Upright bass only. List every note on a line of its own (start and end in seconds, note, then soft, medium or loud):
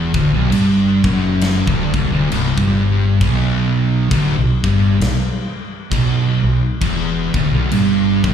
0.14 0.31 D1 loud
0.31 0.49 B1 loud
0.50 0.99 G1 loud
1.04 1.64 F#1 medium
1.67 1.92 D1 medium
1.94 2.10 C1 medium
2.11 2.29 D1 loud
2.31 2.56 C1 medium
2.57 3.17 G1 loud
3.21 4.07 B1 medium
4.11 4.35 D1 loud
4.37 4.62 B1 medium
4.64 4.99 G1 loud
5.01 5.50 B1 medium
5.91 6.40 B1 medium
6.43 6.78 B1 medium
6.81 7.30 E1 medium
7.34 7.51 D1 medium
7.51 7.70 B1 loud
7.70 8.20 G1 loud
8.24 8.34 F#1 medium